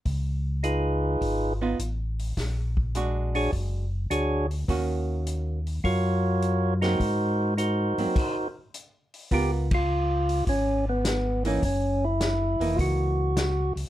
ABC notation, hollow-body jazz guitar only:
X:1
M:4/4
L:1/8
Q:"Swing" 1/4=104
K:Dbmix
V:1 name="Hollow-body jazz guitar"
z4 z [CEF] z2 | z2 [A,=D^F]3 z3 | [E,B,DG]3 z4 [G,B,=C] | z3 [G,B,=C] z4 |
[CFB] z6 [_F,B,E] | z3 [_F,B,E]3 z2 |]